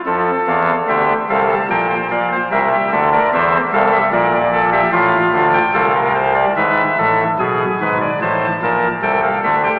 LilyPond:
<<
  \new Staff \with { instrumentName = "Pipe organ" } { \time 4/4 \key f \major \tempo 4 = 73 << { r8 f''8 e''8 f''16 a''16 g''8 f''8 e''8. d''16 | e''8 f''16 e''16 d''8. e''16 f''8. g''16 f''4 | e''4 gis''4 a''4 g''16 f''16 e''16 g''16 | } \\ { a'4 g'8 a'8 bes'16 c''16 d''16 c''16 bes'16 g'16 a'16 bes'16 | c''8 a'8 bes'8 a'16 g'16 f'4 a'16 bes'16 c''16 d''16 | b'8 a'8 gis'8 b'16 d''16 c''8 bes'8 a'8. g'16 | } >> }
  \new Staff \with { instrumentName = "Pipe organ" } { \clef bass \time 4/4 \key f \major <f, f>8 <e, e>8 <d, d>8 <c, c>8 <bes,, bes,>8 <bes,, bes,>8 <c, c>8 <d, d>8 | <e, e>8 <c, c>8 <bes,, bes,>4 <a,, a,>8 <d, d>8 <c, c>4 | <gis,, gis,>8 <a,, a,>8 <b,, b,>8 <gis,, gis,>8 <a,, a,>8 <bes,, bes,>8 <c, c>8 <d, d>8 | }
>>